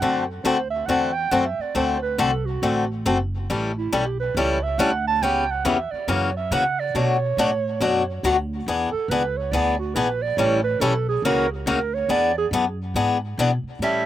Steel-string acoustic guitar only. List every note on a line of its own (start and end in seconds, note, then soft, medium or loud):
0.02 0.23 D3 medium
0.02 0.23 A3 medium
0.02 0.24 C4 medium
0.02 0.24 F#4 medium
0.02 0.24 A4 medium
0.45 0.56 D3 medium
0.45 0.57 A3 medium
0.45 0.57 C4 medium
0.45 0.57 F#4 medium
0.45 0.57 A4 medium
0.89 1.10 D3 medium
0.89 1.10 A3 medium
0.89 1.10 C4 medium
0.89 1.10 F#4 medium
0.89 1.10 A4 medium
1.31 1.43 D3 medium
1.31 1.43 A3 medium
1.31 1.43 C4 medium
1.31 1.44 F#4 medium
1.31 1.44 A4 medium
1.75 1.96 D3 medium
1.75 1.97 A3 medium
1.75 1.97 C4 medium
1.75 1.97 F#4 medium
1.75 1.97 A4 medium
2.18 2.30 D3 medium
2.18 2.30 A3 medium
2.18 2.30 C4 medium
2.18 2.30 F#4 medium
2.18 2.30 A4 medium
2.63 2.84 D3 medium
2.63 2.84 A3 medium
2.63 2.84 C4 medium
2.63 2.84 F#4 medium
2.63 2.84 A4 medium
3.06 3.17 D3 medium
3.06 3.17 A3 medium
3.06 3.17 C4 medium
3.06 3.17 F#4 medium
3.06 3.17 A4 medium
3.50 3.70 E3 medium
3.50 3.71 G3 medium
3.50 3.71 C#4 medium
3.50 3.71 E4 medium
3.50 3.71 A4 medium
3.92 4.04 E3 medium
3.92 4.04 G3 medium
3.92 4.04 C#4 medium
3.92 4.04 E4 medium
3.92 4.04 A4 medium
4.37 4.57 E3 medium
4.37 4.57 G3 medium
4.37 4.57 C#4 medium
4.37 4.58 E4 medium
4.37 4.58 A4 medium
4.79 4.90 E3 medium
4.79 4.90 G3 medium
4.79 4.90 C#4 medium
4.79 4.91 E4 medium
4.79 4.90 A4 loud
5.23 5.43 C#3 medium
5.23 5.43 E3 medium
5.23 5.44 B3 medium
5.23 5.44 C#4 medium
5.23 5.44 G4 medium
5.65 5.76 C#3 medium
5.65 5.76 E3 medium
5.65 5.76 B3 medium
5.65 5.76 C#4 medium
5.65 5.77 G4 medium
6.08 6.29 C#3 medium
6.08 6.29 E3 medium
6.08 6.29 A#3 medium
6.08 6.30 C#4 medium
6.08 6.30 F#4 medium
6.52 6.63 C#3 medium
6.52 6.63 E3 medium
6.52 6.63 A#3 medium
6.52 6.63 C#4 medium
6.52 6.63 F#4 medium
6.95 7.16 B2 medium
6.95 7.16 F#3 medium
6.95 7.16 A3 medium
6.95 7.16 D4 medium
6.95 7.16 F#4 medium
7.38 7.49 B2 medium
7.38 7.49 F#3 medium
7.38 7.49 A3 medium
7.38 7.50 D4 medium
7.38 7.50 F#4 medium
7.81 8.02 B2 medium
7.81 8.02 F#3 medium
7.81 8.02 A3 medium
7.81 8.02 D4 medium
7.81 8.02 F#4 medium
8.24 8.35 B2 medium
8.24 8.35 F#3 medium
8.24 8.35 A3 medium
8.24 8.35 D4 medium
8.24 8.36 F#4 medium
8.68 8.88 E3 medium
8.68 8.88 B3 medium
8.68 8.89 D4 medium
8.68 8.89 G#4 medium
9.11 9.22 E3 medium
9.11 9.22 B3 medium
9.11 9.22 D4 medium
9.11 9.22 G#4 medium
9.53 9.74 E3 medium
9.53 9.74 B3 medium
9.53 9.74 D4 medium
9.53 9.74 G#4 medium
9.96 10.07 E3 medium
9.96 10.07 B3 medium
9.96 10.07 D4 medium
9.96 10.07 G#4 medium
10.38 10.59 E3 medium
10.38 10.59 G3 medium
10.38 10.60 C#4 medium
10.38 10.60 E4 medium
10.38 10.60 A4 medium
10.81 10.92 E3 medium
10.81 10.92 G3 medium
10.81 10.93 C#4 medium
10.81 10.93 E4 medium
10.81 10.93 A4 loud
11.25 11.45 C#3 medium
11.25 11.46 E3 medium
11.25 11.46 A#3 medium
11.25 11.46 C#4 medium
11.25 11.46 F#4 medium
11.67 11.78 C#3 medium
11.67 11.78 E3 medium
11.67 11.78 A#3 medium
11.67 11.78 C#4 medium
11.67 11.78 F#4 medium
12.09 12.30 E3 medium
12.09 12.31 B3 medium
12.09 12.31 D4 medium
12.09 12.31 G#4 medium
12.53 12.64 E3 medium
12.53 12.64 B3 medium
12.53 12.64 D4 medium
12.53 12.64 G#4 medium
12.96 13.16 E3 medium
12.96 13.17 B3 medium
12.96 13.17 D4 medium
12.96 13.17 G#4 loud
13.39 13.50 E3 medium
13.39 13.50 B3 medium
13.39 13.50 D4 medium
13.39 13.50 G#4 medium
13.82 14.03 E3 medium
13.82 14.03 G3 medium
13.82 14.03 C#4 medium
13.82 14.03 E4 medium
13.82 14.03 A4 medium